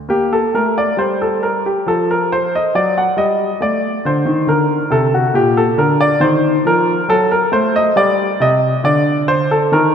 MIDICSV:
0, 0, Header, 1, 2, 480
1, 0, Start_track
1, 0, Key_signature, -2, "minor"
1, 0, Tempo, 887574
1, 45, Time_signature, 3, 2, 24, 8
1, 1484, Tempo, 869565
1, 5461, End_track
2, 0, Start_track
2, 0, Title_t, "Grand piano"
2, 0, Program_c, 0, 0
2, 47, Note_on_c, 0, 58, 45
2, 53, Note_on_c, 0, 67, 68
2, 171, Note_off_c, 0, 67, 0
2, 176, Note_on_c, 0, 69, 64
2, 222, Note_off_c, 0, 58, 0
2, 294, Note_off_c, 0, 69, 0
2, 294, Note_on_c, 0, 57, 43
2, 297, Note_on_c, 0, 70, 62
2, 414, Note_off_c, 0, 70, 0
2, 420, Note_on_c, 0, 74, 68
2, 466, Note_off_c, 0, 57, 0
2, 525, Note_on_c, 0, 55, 46
2, 533, Note_on_c, 0, 72, 64
2, 536, Note_off_c, 0, 74, 0
2, 651, Note_off_c, 0, 72, 0
2, 657, Note_on_c, 0, 69, 55
2, 772, Note_on_c, 0, 70, 61
2, 773, Note_off_c, 0, 69, 0
2, 870, Note_off_c, 0, 55, 0
2, 890, Note_off_c, 0, 70, 0
2, 898, Note_on_c, 0, 67, 55
2, 1008, Note_on_c, 0, 53, 44
2, 1013, Note_off_c, 0, 67, 0
2, 1016, Note_on_c, 0, 69, 65
2, 1131, Note_off_c, 0, 69, 0
2, 1139, Note_on_c, 0, 70, 62
2, 1252, Note_off_c, 0, 70, 0
2, 1257, Note_on_c, 0, 72, 66
2, 1350, Note_off_c, 0, 53, 0
2, 1370, Note_off_c, 0, 72, 0
2, 1381, Note_on_c, 0, 75, 66
2, 1486, Note_on_c, 0, 54, 46
2, 1489, Note_on_c, 0, 74, 73
2, 1491, Note_off_c, 0, 75, 0
2, 1605, Note_off_c, 0, 74, 0
2, 1612, Note_on_c, 0, 78, 67
2, 1657, Note_off_c, 0, 54, 0
2, 1717, Note_on_c, 0, 55, 45
2, 1724, Note_on_c, 0, 75, 65
2, 1726, Note_off_c, 0, 78, 0
2, 1891, Note_off_c, 0, 55, 0
2, 1959, Note_on_c, 0, 57, 44
2, 1961, Note_off_c, 0, 75, 0
2, 1967, Note_on_c, 0, 74, 65
2, 2132, Note_off_c, 0, 57, 0
2, 2204, Note_off_c, 0, 74, 0
2, 2206, Note_on_c, 0, 50, 48
2, 2212, Note_on_c, 0, 72, 61
2, 2317, Note_off_c, 0, 50, 0
2, 2318, Note_on_c, 0, 51, 49
2, 2433, Note_off_c, 0, 51, 0
2, 2437, Note_on_c, 0, 50, 44
2, 2445, Note_on_c, 0, 70, 69
2, 2447, Note_off_c, 0, 72, 0
2, 2611, Note_off_c, 0, 50, 0
2, 2676, Note_on_c, 0, 48, 49
2, 2683, Note_on_c, 0, 69, 69
2, 2684, Note_off_c, 0, 70, 0
2, 2803, Note_off_c, 0, 69, 0
2, 2808, Note_on_c, 0, 66, 63
2, 2852, Note_off_c, 0, 48, 0
2, 2917, Note_on_c, 0, 46, 50
2, 2924, Note_on_c, 0, 67, 74
2, 2926, Note_off_c, 0, 66, 0
2, 3044, Note_off_c, 0, 67, 0
2, 3045, Note_on_c, 0, 69, 67
2, 3093, Note_off_c, 0, 46, 0
2, 3158, Note_on_c, 0, 50, 52
2, 3162, Note_on_c, 0, 70, 66
2, 3165, Note_off_c, 0, 69, 0
2, 3283, Note_off_c, 0, 70, 0
2, 3284, Note_on_c, 0, 74, 78
2, 3334, Note_off_c, 0, 50, 0
2, 3393, Note_on_c, 0, 51, 53
2, 3397, Note_on_c, 0, 72, 72
2, 3405, Note_off_c, 0, 74, 0
2, 3571, Note_off_c, 0, 51, 0
2, 3606, Note_off_c, 0, 72, 0
2, 3640, Note_on_c, 0, 53, 47
2, 3650, Note_on_c, 0, 70, 75
2, 3816, Note_off_c, 0, 53, 0
2, 3853, Note_off_c, 0, 70, 0
2, 3880, Note_on_c, 0, 54, 52
2, 3886, Note_on_c, 0, 69, 85
2, 4007, Note_off_c, 0, 69, 0
2, 4007, Note_on_c, 0, 70, 64
2, 4056, Note_off_c, 0, 54, 0
2, 4119, Note_on_c, 0, 57, 54
2, 4125, Note_on_c, 0, 72, 74
2, 4128, Note_off_c, 0, 70, 0
2, 4248, Note_off_c, 0, 72, 0
2, 4252, Note_on_c, 0, 75, 75
2, 4297, Note_off_c, 0, 57, 0
2, 4363, Note_on_c, 0, 55, 57
2, 4368, Note_on_c, 0, 74, 80
2, 4372, Note_off_c, 0, 75, 0
2, 4539, Note_off_c, 0, 55, 0
2, 4607, Note_on_c, 0, 48, 53
2, 4611, Note_off_c, 0, 74, 0
2, 4615, Note_on_c, 0, 75, 75
2, 4780, Note_off_c, 0, 48, 0
2, 4816, Note_off_c, 0, 75, 0
2, 4848, Note_on_c, 0, 50, 55
2, 4853, Note_on_c, 0, 74, 77
2, 5053, Note_off_c, 0, 74, 0
2, 5092, Note_on_c, 0, 72, 82
2, 5191, Note_off_c, 0, 50, 0
2, 5209, Note_off_c, 0, 72, 0
2, 5220, Note_on_c, 0, 69, 74
2, 5332, Note_off_c, 0, 69, 0
2, 5334, Note_on_c, 0, 51, 56
2, 5339, Note_on_c, 0, 70, 73
2, 5461, Note_off_c, 0, 51, 0
2, 5461, Note_off_c, 0, 70, 0
2, 5461, End_track
0, 0, End_of_file